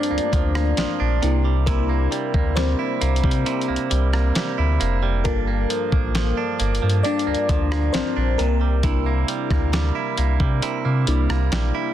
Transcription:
0.00 1.31 G2 medium
0.00 0.31 F3 medium
0.00 1.24 A3 medium
0.00 0.10 A#3 medium
0.00 1.23 A#3 soft
0.00 1.24 C4 medium
0.00 0.99 D4 medium
0.00 1.23 D4 medium
0.00 1.24 F4 medium
0.00 1.24 C5 loud
0.00 1.72 D5 loud
0.00 closed hi-hat soft
0.11 0.20 D2 medium
0.11 0.55 A#3 medium
0.18 closed hi-hat soft
0.33 0.74 D2 medium
0.33 0.76 F3 medium
0.33 kick loud
0.33 closed hi-hat medium
0.55 1.70 A#3 medium
0.55 cross-stick loud
0.77 0.87 A#1 medium
0.77 1.31 F3 medium
0.77 snare loud
0.77 closed hi-hat medium
1.00 1.21 A#1 medium
1.00 1.31 D4 medium
1.22 2.08 C2 loud
1.22 1.66 C3 medium
1.22 1.67 A#3 medium
1.22 1.82 D4 medium
1.22 1.83 E4 medium
1.22 closed hi-hat medium
1.45 2.11 G3 medium
1.66 3.45 C3 medium
1.66 2.53 A#3 medium
1.66 2.78 E4 medium
1.66 2.59 A#4 medium
1.66 kick loud
1.66 closed hi-hat medium
1.89 2.34 A#3 medium
2.12 2.56 G3 medium
2.12 closed hi-hat medium
2.34 2.75 D2 medium
2.34 3.01 A#3 medium
2.34 kick loud
2.56 3.23 G3 medium
2.56 3.87 C4 medium
2.56 3.86 C5 medium
2.56 snare loud
2.56 closed hi-hat medium
2.79 3.45 E4 medium
3.01 3.22 C2 medium
3.01 3.68 A#3 medium
3.01 closed hi-hat medium
3.16 closed hi-hat medium
3.24 3.44 C3 loud
3.24 3.90 G3 medium
3.24 kick loud
3.31 closed hi-hat medium
3.46 5.34 C3 medium
3.46 4.57 E4 medium
3.46 closed hi-hat medium
3.61 closed hi-hat soft
3.68 3.78 C2 medium
3.68 4.13 A#3 medium
3.76 closed hi-hat soft
3.90 4.32 C2 loud
3.90 4.35 G3 medium
3.90 closed hi-hat medium
4.13 4.80 A#3 medium
4.13 cross-stick medium
4.35 5.02 G3 medium
4.35 snare loud
4.35 closed hi-hat medium
4.58 4.79 D2 medium
4.58 5.25 E4 medium
4.80 5.27 F1 loud
4.80 5.47 A#3 medium
4.80 closed hi-hat medium
5.03 5.70 G3 medium
5.24 5.66 G1 loud
5.24 7.03 G2 medium
5.24 7.01 A#3 medium
5.24 6.36 D4 medium
5.24 8.35 F4 medium
5.24 8.35 A4 medium
5.24 7.09 A#4 medium
5.24 kick loud
5.24 closed hi-hat medium
5.47 5.92 A#3 medium
5.70 6.14 F3 medium
5.70 closed hi-hat medium
5.92 6.34 A1 medium
5.92 6.59 A#3 medium
5.92 kick loud
6.15 6.81 F3 medium
6.15 snare loud
6.15 closed hi-hat medium
6.37 7.04 D4 medium
6.59 6.80 G1 loud
6.59 7.27 A#3 medium
6.59 closed hi-hat medium
6.75 closed hi-hat medium
6.82 7.03 G2 loud
6.82 7.48 F3 medium
6.90 closed hi-hat medium
7.03 8.48 G2 medium
7.03 8.15 D4 medium
7.03 7.91 D4 medium
7.03 7.96 D5 loud
7.03 closed hi-hat soft
7.19 closed hi-hat soft
7.27 7.36 D2 soft
7.27 7.71 A#3 medium
7.35 closed hi-hat soft
7.49 7.90 D2 loud
7.49 7.93 F3 medium
7.49 kick loud
7.49 closed hi-hat medium
7.72 8.87 A#3 medium
7.72 cross-stick loud
7.93 8.03 A#1 soft
7.93 8.48 F3 medium
7.93 8.09 C4 medium
7.93 8.07 C5 loud
7.93 snare loud
7.93 closed hi-hat medium
8.17 8.37 A#1 medium
8.17 8.48 D4 medium
8.38 9.25 C2 loud
8.38 8.82 C3 medium
8.38 8.82 A#3 medium
8.38 11.03 A#4 medium
8.38 closed hi-hat medium
8.61 9.28 G3 medium
8.83 10.61 C3 medium
8.83 10.14 A#3 medium
8.83 10.14 D4 medium
8.83 9.94 E4 medium
8.83 10.14 E4 medium
8.83 kick loud
8.83 closed hi-hat medium
9.06 9.50 A#3 medium
9.28 9.73 G3 medium
9.28 closed hi-hat medium
9.51 9.92 D2 medium
9.51 10.17 A#3 medium
9.51 kick loud
9.51 cross-stick medium
9.73 10.40 G3 medium
9.73 snare loud
9.73 closed hi-hat medium
9.95 10.62 E4 medium
10.18 10.38 C2 loud
10.18 10.85 A#3 medium
10.18 closed hi-hat medium
10.40 10.61 C3 loud
10.40 11.07 G3 medium
10.40 kick loud
10.62 11.94 C3 medium
10.62 11.73 E4 medium
10.62 closed hi-hat medium
10.85 11.06 C3 loud
10.85 11.29 A#3 medium
11.07 11.28 C2 loud
11.07 11.52 G3 medium
11.07 11.48 A#3 medium
11.07 11.48 D4 soft
11.07 11.49 E4 medium
11.07 closed hi-hat medium
11.30 11.50 C2 loud
11.30 11.94 A#3 medium
11.30 cross-stick loud
11.52 11.72 A#1 loud
11.52 11.94 G3 medium
11.52 snare loud
11.52 closed hi-hat medium
11.75 11.94 E4 medium

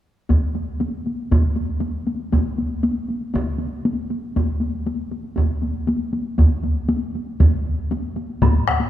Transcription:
0.29 taiko medium
0.29 taiko high medium
0.42 taiko high soft
0.55 taiko high soft
0.80 taiko high medium
0.93 taiko high soft
1.06 taiko high soft
1.19 taiko high soft
1.31 taiko medium
1.31 taiko high soft
1.44 taiko high soft
1.56 taiko high soft
1.69 taiko high soft
1.80 taiko high medium
2.07 taiko high soft
2.20 taiko high soft
2.32 taiko medium
2.32 taiko high medium
2.46 taiko high soft
2.58 taiko high soft
2.70 taiko high soft
2.83 taiko high medium
2.96 taiko high soft
3.09 taiko high soft
3.21 taiko high soft
3.34 taiko medium
3.34 taiko high medium
3.47 taiko high soft
3.59 taiko high soft
3.72 taiko high soft
3.85 taiko high medium
4.10 taiko high soft
4.24 taiko high soft
4.36 taiko medium
4.36 taiko high medium
4.49 taiko high soft
4.61 taiko high soft
4.74 taiko high soft
4.86 taiko high medium
5.00 taiko high soft
5.11 taiko high soft
5.24 taiko high soft
5.36 taiko medium
5.36 taiko high soft
5.50 taiko high soft
5.62 taiko high soft
5.75 taiko high soft
5.87 taiko high medium
6.13 taiko high soft
6.26 taiko high soft
6.38 taiko medium
6.38 taiko high medium
6.51 taiko high soft
6.63 taiko high soft
6.77 taiko high soft
6.89 taiko high medium
7.02 taiko high soft
7.15 taiko high soft
7.27 taiko high soft
7.40 taiko medium
7.40 taiko high medium
7.79 taiko high soft
7.91 taiko high medium
8.16 taiko high soft
8.30 taiko high soft
8.42 taiko medium
8.42 taiko low-mid medium
8.42 taiko high medium
8.42 high woodblock soft
8.68 taiko rim medium
8.80 taiko high soft

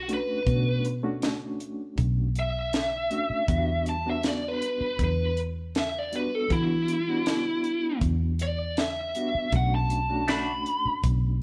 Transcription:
0.00 0.22 B1 medium
0.08 0.39 A3 medium
0.08 0.40 C#4 medium
0.08 0.40 D4 medium
0.08 0.40 F#4 medium
0.08 closed hi-hat medium
0.13 0.84 B4 medium
0.46 1.73 B2 medium
0.46 0.93 A3 medium
0.46 0.93 C#4 medium
0.46 0.93 D4 medium
0.46 0.93 F#4 medium
0.46 kick loud
0.46 closed hi-hat medium
0.85 closed hi-hat medium
1.03 2.27 A3 medium
1.03 2.27 C#4 medium
1.03 2.27 D4 medium
1.03 2.27 F#4 medium
1.22 snare loud
1.22 closed hi-hat medium
1.60 closed hi-hat medium
1.97 3.09 B1 medium
1.97 kick medium
1.97 closed hi-hat medium
2.35 3.84 E5 medium
2.35 closed hi-hat medium
2.73 snare loud
2.73 closed hi-hat medium
3.11 3.42 A3 medium
3.11 3.42 C#4 medium
3.11 3.42 D4 medium
3.11 3.42 F#4 medium
3.11 closed hi-hat medium
3.30 muted fingered electric bass stroke soft
3.48 4.60 E2 medium
3.48 3.95 G3 medium
3.48 3.95 B3 medium
3.48 3.95 D4 medium
3.48 3.96 F#4 medium
3.48 kick loud
3.48 closed hi-hat medium
3.86 4.07 A5 medium
3.86 closed hi-hat medium
4.06 5.29 G3 medium
4.06 5.29 B3 medium
4.06 5.30 D4 medium
4.06 5.30 F#4 medium
4.10 4.26 E5 medium
4.23 snare loud
4.23 closed hi-hat medium
4.28 4.48 D5 medium
4.48 5.00 B4 medium
4.62 closed hi-hat medium
4.80 muted fingered electric bass stroke soft
4.99 6.25 E2 medium
4.99 kick medium
4.99 closed hi-hat medium
5.04 5.38 B4 medium
5.37 closed hi-hat medium
5.75 5.99 E5 medium
5.75 snare loud
5.75 closed hi-hat medium
5.99 6.14 D5 medium
6.12 6.43 G3 medium
6.12 6.44 B3 medium
6.12 6.44 D4 medium
6.12 6.44 F#4 medium
6.12 6.35 B4 medium
6.12 closed hi-hat medium
6.35 6.51 A4 medium
6.49 7.77 E3 medium
6.49 6.97 G3 medium
6.49 6.97 B3 medium
6.49 6.97 D4 medium
6.49 7.98 E4 medium
6.49 6.97 F#4 medium
6.49 kick medium
6.49 closed hi-hat medium
6.88 closed hi-hat medium
7.07 8.31 G3 medium
7.07 8.32 B3 medium
7.07 8.31 D4 medium
7.07 8.32 F#4 medium
7.26 snare loud
7.26 closed hi-hat medium
7.64 closed hi-hat soft
8.01 9.13 E2 medium
8.01 kick medium
8.01 closed hi-hat medium
8.39 8.77 D5 medium
8.39 closed hi-hat medium
8.77 9.52 E5 medium
8.77 snare loud
8.77 closed hi-hat medium
9.15 9.46 G3 medium
9.15 9.46 B3 medium
9.15 9.47 D4 medium
9.15 9.47 F#4 medium
9.15 closed hi-hat medium
9.35 muted fingered electric bass stroke soft
9.52 10.64 B1 medium
9.52 9.99 A3 medium
9.52 10.00 C#4 medium
9.52 10.00 D4 medium
9.52 10.00 F#4 medium
9.52 9.73 F#5 medium
9.52 kick loud
9.52 closed hi-hat medium
9.75 10.28 A5 medium
9.90 closed hi-hat medium
10.09 11.33 A3 medium
10.09 11.33 C#4 medium
10.09 11.33 D4 medium
10.09 11.34 F#4 medium
10.28 10.51 A3 medium
10.28 10.52 D4 medium
10.28 10.52 F#4 medium
10.28 11.02 B5 loud
10.28 snare loud
10.28 closed hi-hat medium
10.66 closed hi-hat medium
10.85 muted fingered electric bass stroke soft
11.04 11.43 B1 medium
11.04 kick medium
11.04 closed hi-hat medium

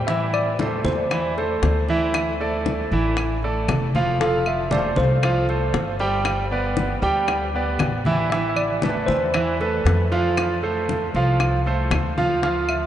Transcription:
0.00 0.79 A2 medium
0.07 0.51 E3 medium
0.07 0.51 E4 medium
0.07 0.19 E5 loud
0.07 0.51 E5 medium
0.07 high bongo medium
0.07 high conga soft
0.33 0.82 D5 medium
0.33 high conga soft
0.33 claves medium
0.59 1.02 A3 medium
0.59 1.03 A4 medium
0.59 1.03 C5 medium
0.59 high bongo medium
0.59 high conga medium
0.84 1.58 E2 medium
0.84 1.33 C5 medium
0.84 high bongo soft
0.84 high conga medium
1.11 1.33 E3 medium
1.11 1.33 E4 medium
1.11 1.33 E5 medium
1.11 high bongo medium
1.11 high conga soft
1.11 claves medium
1.37 1.80 A3 medium
1.37 1.80 A4 medium
1.37 1.80 C5 medium
1.37 high bongo soft
1.37 high conga soft
1.62 2.85 D2 medium
1.62 high bongo medium
1.62 low bongo medium
1.62 high conga soft
1.89 2.31 E3 medium
1.89 2.31 E4 medium
1.89 2.32 E5 medium
1.89 high bongo soft
1.89 high conga soft
2.14 high bongo medium
2.14 high conga soft
2.14 claves medium
2.40 2.82 A3 medium
2.40 2.83 A4 medium
2.40 2.83 D5 medium
2.40 high conga soft
2.66 high bongo medium
2.66 high conga medium
2.91 3.65 A1 medium
2.91 3.34 E3 medium
2.91 3.34 E4 medium
2.91 3.35 E5 medium
2.91 high bongo soft
2.91 high conga soft
3.17 high bongo medium
3.17 high conga soft
3.17 claves medium
3.43 3.86 A3 medium
3.43 3.86 A4 medium
3.43 3.86 D5 medium
3.43 high conga soft
3.68 4.91 F1 medium
3.68 high bongo medium
3.68 low bongo medium
3.68 high conga medium
3.68 claves medium
3.95 4.16 F3 medium
3.95 4.16 F4 medium
3.95 4.16 F5 medium
3.95 high bongo soft
3.95 high conga medium
4.21 4.62 F3 medium
4.21 4.63 F4 medium
4.21 4.44 A4 medium
4.21 4.63 F5 medium
4.21 high bongo medium
4.21 high conga soft
4.46 4.71 E5 medium
4.46 high conga soft
4.46 claves medium
4.71 5.14 A3 medium
4.71 5.14 A4 medium
4.71 5.15 C5 medium
4.71 4.98 D5 medium
4.71 high bongo medium
4.71 high conga medium
4.96 5.70 C2 medium
4.96 5.96 C5 medium
4.96 high bongo soft
4.96 high conga medium
5.23 5.44 F3 medium
5.23 5.45 F4 medium
5.23 5.45 F5 medium
5.23 high bongo medium
5.23 high conga soft
5.23 claves medium
5.48 5.91 A3 medium
5.48 5.91 A4 medium
5.48 5.91 C5 medium
5.48 high bongo soft
5.48 high conga soft
5.74 6.96 G1 medium
5.74 high bongo medium
5.74 low bongo medium
5.74 high conga soft
5.99 6.42 G3 medium
5.99 6.42 G4 medium
5.99 6.43 G5 medium
5.99 high bongo soft
5.99 high conga soft
6.25 high bongo medium
6.25 high conga soft
6.25 claves medium
6.51 6.94 B3 medium
6.51 6.94 B4 medium
6.51 6.94 D5 medium
6.51 high conga soft
6.77 high bongo medium
6.77 high conga medium
7.02 7.76 D2 medium
7.02 7.45 G3 medium
7.02 7.45 G4 medium
7.02 7.45 G5 medium
7.02 high bongo soft
7.02 high conga soft
7.28 high bongo medium
7.28 high conga soft
7.28 claves medium
7.54 7.97 B3 medium
7.54 7.97 B4 medium
7.54 7.97 D5 medium
7.54 high conga soft
7.79 9.02 A1 medium
7.79 high bongo medium
7.79 low bongo medium
7.79 high conga medium
7.79 claves medium
8.05 8.27 E3 medium
8.05 8.27 E4 medium
8.05 8.27 E5 medium
8.05 high bongo soft
8.05 high conga medium
8.30 8.74 E3 medium
8.30 8.74 E4 medium
8.30 8.48 E5 loud
8.30 8.74 E5 medium
8.30 high bongo medium
8.30 high conga soft
8.49 8.57 E5 medium
8.56 9.10 D5 medium
8.56 high conga soft
8.56 claves medium
8.82 9.25 A3 medium
8.82 9.25 A4 medium
8.82 9.25 B4 medium
8.82 high bongo medium
8.82 high conga loud
9.06 9.81 E2 medium
9.06 9.55 C5 medium
9.06 high bongo soft
9.06 high conga medium
9.34 9.56 E3 medium
9.34 9.56 E4 medium
9.34 9.56 E5 medium
9.34 high bongo medium
9.34 high conga soft
9.34 claves medium
9.60 10.03 A3 medium
9.60 10.03 A4 medium
9.60 10.03 B4 medium
9.60 high bongo soft
9.60 high conga soft
9.85 11.08 F2 medium
9.85 high bongo medium
9.85 low bongo medium
9.85 high conga soft
10.12 10.54 F3 medium
10.12 10.54 F4 medium
10.12 10.54 F5 medium
10.12 high bongo soft
10.12 high conga soft
10.37 high bongo medium
10.37 high conga soft
10.37 claves medium
10.62 11.05 A3 medium
10.62 11.05 A4 medium
10.62 11.06 C5 medium
10.62 high conga soft
10.89 high bongo medium
10.89 high conga medium
11.14 11.88 C2 medium
11.14 11.57 F3 medium
11.14 11.57 F4 medium
11.14 11.58 F5 medium
11.14 high bongo soft
11.14 high conga soft
11.40 high bongo medium
11.40 high conga soft
11.40 claves medium
11.66 12.08 A3 medium
11.66 12.08 A4 medium
11.66 12.09 C5 medium
11.66 high conga soft
11.91 12.86 D2 medium
11.91 high bongo medium
11.91 low bongo medium
11.91 high conga medium
11.91 claves medium
12.18 12.39 F3 medium
12.18 12.39 F4 medium
12.18 12.39 F5 medium
12.18 high bongo soft
12.18 high conga medium
12.43 12.86 F3 medium
12.43 12.86 F4 medium
12.43 12.54 F5 medium
12.43 12.86 F5 medium
12.43 high bongo medium
12.43 high conga soft
12.69 12.86 E5 medium
12.69 high conga soft
12.69 claves medium

